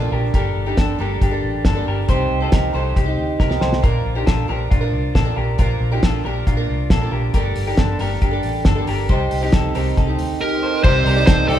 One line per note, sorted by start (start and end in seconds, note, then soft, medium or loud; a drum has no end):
0.00 0.33 F3 soft
0.00 0.34 A#3 medium
0.00 0.33 D4 medium
0.00 0.12 F4 medium
0.00 0.12 A4 medium
0.12 0.30 A#1 medium
0.12 0.34 G4 medium
0.12 0.33 A#4 medium
0.34 0.52 G1 medium
0.34 0.67 G3 medium
0.34 0.67 A#3 medium
0.34 0.66 D4 medium
0.34 0.65 G4 medium
0.34 0.65 A4 medium
0.34 0.65 A#4 medium
0.34 kick loud
0.34 closed hi-hat medium
0.55 0.73 G1 medium
0.66 0.97 G3 soft
0.66 0.99 A#3 soft
0.66 0.99 D4 medium
0.66 0.78 D#4 medium
0.66 0.78 G4 medium
0.66 0.99 A4 medium
0.77 0.95 G1 medium
0.77 1.00 D4 medium
0.77 1.00 A4 medium
0.77 kick loud
0.77 snare loud
0.77 closed hi-hat medium
0.99 1.17 G1 medium
0.99 1.32 G3 medium
0.99 1.32 A#3 medium
0.99 1.31 D4 medium
0.99 1.21 G4 medium
0.99 1.30 A4 medium
0.99 1.22 A#4 medium
1.21 1.39 G1 medium
1.21 1.63 D4 medium
1.21 1.63 G4 medium
1.21 kick medium
1.21 closed hi-hat medium
1.31 1.77 G3 soft
1.31 1.76 A#3 soft
1.31 1.75 D4 soft
1.31 1.73 A4 medium
1.43 1.66 A1 medium
1.64 1.83 G1 medium
1.64 1.88 D4 medium
1.64 1.87 A4 medium
1.64 kick loud
1.64 snare medium
1.64 closed hi-hat soft
1.75 2.07 G3 soft
1.75 2.09 A#3 soft
1.75 2.09 D4 medium
1.75 2.08 A4 medium
1.86 2.04 G1 medium
1.86 2.09 G4 medium
1.86 2.09 A#4 medium
2.08 2.27 C2 loud
2.08 2.41 G3 medium
2.08 2.42 C4 medium
2.08 2.41 D#4 medium
2.08 2.40 G4 medium
2.08 2.39 G4 medium
2.08 2.40 C5 medium
2.08 kick medium
2.08 closed hi-hat medium
2.31 2.49 C2 medium
2.40 2.74 C4 soft
2.40 2.74 D#4 soft
2.40 2.53 F4 medium
2.40 2.74 G4 soft
2.40 2.52 A4 medium
2.52 2.71 C2 medium
2.52 2.75 G4 medium
2.52 2.74 A#4 medium
2.52 kick loud
2.52 snare medium
2.52 closed hi-hat medium
2.73 2.92 C2 medium
2.73 3.07 G3 medium
2.73 3.07 C4 medium
2.73 3.07 D#4 medium
2.73 3.05 G4 medium
2.73 2.96 A4 medium
2.73 2.96 C5 medium
2.96 3.14 C2 medium
2.96 3.38 D#4 medium
2.96 3.37 G4 medium
2.96 kick medium
2.96 closed hi-hat medium
3.06 3.51 C4 soft
3.06 3.50 D#4 medium
3.06 3.48 G4 medium
3.17 3.35 D2 medium
3.40 3.58 C2 medium
3.40 3.62 G4 medium
3.40 3.61 A#4 medium
3.40 kick medium
3.40 snare soft
3.49 3.83 C4 soft
3.49 3.84 D#4 soft
3.49 3.83 G4 medium
3.49 snare medium
3.61 3.79 C2 medium
3.61 3.84 A4 medium
3.61 3.83 C5 medium
3.61 snare medium
3.73 snare medium
3.82 4.02 A#1 loud
3.82 4.16 F3 medium
3.82 4.16 A#3 medium
3.82 4.15 D4 medium
3.82 4.15 F4 medium
3.82 4.14 A#4 medium
3.82 kick loud
3.82 closed hi-hat medium
4.05 4.23 A#1 medium
4.15 4.47 F3 soft
4.15 4.48 A#3 soft
4.15 4.49 D4 soft
4.15 4.28 D#4 soft
4.15 4.27 G4 medium
4.15 4.49 A#4 medium
4.26 4.45 A#1 medium
4.26 4.49 F4 medium
4.26 4.49 A4 medium
4.26 kick medium
4.26 snare medium
4.26 closed hi-hat medium
4.48 4.67 A#1 medium
4.48 4.81 F3 medium
4.48 4.82 A#3 medium
4.48 4.81 D4 medium
4.48 4.70 G4 medium
4.48 4.71 A#4 medium
4.48 4.80 A#4 medium
4.71 4.90 A#1 medium
4.71 5.13 D4 medium
4.71 5.12 F4 medium
4.71 kick loud
4.71 closed hi-hat medium
4.81 5.27 F3 soft
4.81 5.26 A#3 soft
4.81 5.26 D4 soft
4.81 5.24 A#4 medium
4.92 5.10 C2 medium
5.15 5.33 A#1 medium
5.15 5.37 F4 medium
5.15 5.36 A4 medium
5.15 kick medium
5.15 snare medium
5.15 closed hi-hat medium
5.25 5.57 F3 soft
5.25 5.58 A#3 soft
5.25 5.59 D4 soft
5.25 5.58 A#4 medium
5.36 5.54 A#1 medium
5.36 5.59 G4 medium
5.36 5.58 A#4 medium
5.58 5.77 A#1 loud
5.58 5.91 F3 medium
5.58 5.92 A#3 medium
5.58 5.91 D4 medium
5.58 5.90 F4 medium
5.58 5.90 A#4 medium
5.58 kick loud
5.58 closed hi-hat medium
5.80 5.98 A#1 medium
5.92 6.23 F3 soft
5.92 6.24 A#3 soft
5.92 6.25 D4 medium
5.92 6.03 D#4 medium
5.92 6.03 G4 medium
5.92 6.24 A#4 medium
6.03 6.25 F4 medium
6.03 6.24 A4 medium
6.03 kick medium
6.03 snare loud
6.03 closed hi-hat medium
6.24 6.43 A#1 medium
6.24 6.57 F3 medium
6.24 6.57 A#3 medium
6.24 6.57 D4 medium
6.24 6.47 G4 medium
6.24 6.47 A#4 medium
6.24 6.56 A#4 medium
6.47 6.64 A#1 medium
6.47 6.88 D4 medium
6.47 6.88 F4 medium
6.47 kick medium
6.47 closed hi-hat medium
6.57 7.02 F3 soft
6.57 7.03 A#3 medium
6.57 7.03 D4 medium
6.57 7.01 A#4 medium
6.69 6.86 C2 medium
6.90 7.08 A#1 medium
6.90 7.12 F4 medium
6.90 7.12 A4 medium
6.90 kick loud
6.90 snare medium
6.90 closed hi-hat medium
7.01 7.34 F3 soft
7.01 7.34 A#3 medium
7.01 7.35 D4 soft
7.01 7.34 A#4 medium
7.12 7.30 A#1 medium
7.12 7.33 G4 soft
7.12 7.33 A#4 medium
7.34 7.52 G1 loud
7.34 7.67 G3 medium
7.34 7.67 A#3 medium
7.34 7.66 D4 medium
7.34 7.65 G4 medium
7.34 7.65 A4 medium
7.34 7.65 A#4 medium
7.34 kick loud
7.34 closed hi-hat medium
7.56 7.74 G1 medium
7.56 open hi-hat medium
7.66 7.98 G3 soft
7.66 7.99 A#3 soft
7.66 8.00 D4 medium
7.66 7.78 D#4 medium
7.66 7.78 G4 medium
7.66 7.99 A4 soft
7.77 7.96 G1 medium
7.77 8.00 D4 medium
7.77 8.00 A4 medium
7.77 kick medium
7.77 snare loud
7.77 closed hi-hat medium
7.99 8.18 G1 medium
7.99 8.32 G3 medium
7.99 8.32 A#3 medium
7.99 8.32 D4 medium
7.99 8.21 G4 medium
7.99 8.30 A4 medium
7.99 8.22 A#4 medium
7.99 open hi-hat medium
8.21 8.39 G1 medium
8.21 8.63 D4 medium
8.21 8.63 G4 medium
8.21 kick medium
8.21 closed hi-hat medium
8.31 8.78 G3 soft
8.31 8.77 A#3 soft
8.31 8.75 D4 soft
8.31 8.74 A4 medium
8.43 8.67 A1 medium
8.43 open hi-hat medium
8.65 8.83 G1 medium
8.65 8.88 D4 medium
8.65 8.87 A4 medium
8.65 kick loud
8.65 snare medium
8.65 closed hi-hat medium
8.76 9.08 G3 soft
8.76 9.10 A#3 soft
8.76 9.09 D4 medium
8.76 9.09 A4 medium
8.87 9.06 G1 medium
8.87 9.09 G4 medium
8.87 9.09 A#4 medium
8.87 open hi-hat medium
9.09 9.27 C2 medium
9.09 9.42 G3 medium
9.09 9.42 C4 medium
9.09 9.42 D#4 medium
9.09 9.41 G4 medium
9.09 9.40 G4 medium
9.09 9.40 C5 medium
9.09 kick medium
9.09 closed hi-hat medium
9.31 9.50 C2 medium
9.31 open hi-hat medium
9.41 9.74 C4 soft
9.41 9.53 D#4 medium
9.41 9.75 D#4 soft
9.41 9.74 G4 medium
9.41 9.53 G4 medium
9.52 9.75 D#4 medium
9.52 9.75 A4 medium
9.52 kick loud
9.52 snare loud
9.52 closed hi-hat medium
9.74 9.93 C2 medium
9.74 10.07 G3 soft
9.74 10.08 C4 medium
9.74 10.08 D#4 medium
9.74 9.97 G4 medium
9.74 10.06 G4 medium
9.74 9.97 A#4 medium
9.74 open hi-hat medium
9.97 10.15 C2 medium
9.97 10.38 D#4 medium
9.97 10.38 A4 medium
9.97 kick loud
9.97 closed hi-hat medium
10.07 10.54 C4 soft
10.07 10.52 D#4 soft
10.07 10.51 G4 medium
10.18 10.36 D2 medium
10.18 open hi-hat medium
10.41 10.63 D#4 medium
10.41 10.62 G4 medium
10.41 10.81 A#4 medium
10.51 10.83 C4 soft
10.51 10.83 D#4 soft
10.51 10.84 G4 medium
10.63 10.84 A4 medium
10.63 10.83 C5 medium
10.83 11.02 C2 loud
10.83 11.16 C3 medium
10.83 11.59 C3 medium
10.83 11.17 G3 medium
10.83 11.59 C4 medium
10.83 11.17 C4 medium
10.83 11.59 D#4 medium
10.83 11.17 D#4 medium
10.83 11.59 G4 medium
10.83 11.06 G4 medium
10.83 11.16 G4 medium
10.83 11.25 C5 loud
10.83 11.06 C5 loud
10.83 11.59 D5 medium
10.83 11.15 D5 medium
10.83 kick loud
10.83 crash loud
11.06 11.24 C2 loud
11.06 11.28 G4 medium
11.06 11.27 A#4 medium
11.06 open hi-hat medium
11.16 11.47 C4 soft
11.16 11.48 D#4 medium
11.16 11.49 G4 soft
11.16 11.49 D5 medium
11.26 11.45 C2 loud
11.26 11.49 D#4 medium
11.26 11.49 A4 medium
11.26 11.48 C5 medium
11.26 kick loud
11.26 snare loud
11.26 hi-hat pedal medium
11.26 ride medium
11.48 11.59 C2 loud
11.48 11.59 C4 medium
11.48 11.59 D#4 medium
11.48 11.59 G4 medium
11.48 11.59 A4 medium
11.48 11.59 D5 medium
11.48 open hi-hat medium